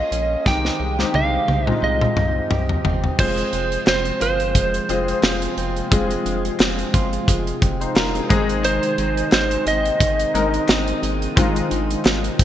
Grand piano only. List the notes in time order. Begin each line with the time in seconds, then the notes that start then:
Already playing: A#3 C#4 F4 G#4 A#4
0.46 G#3 C4 D#4 G4
0.99 G#3 C4 D#4 G4
1.67 G#3 C4 D#4 F4
3.18 G#3 C4 F4 G#4
4.89 G#3 C4 F4 G#4
5.91 G#3 C4 F4 G#4
7.81 D#4 C5
7.96 A#4
8.15 C4 G#4
8.29 G#3 C4 D#4 G#4
10.34 G#3 C4 D#4 A#4
11.36 G#3 C4 D#4 F4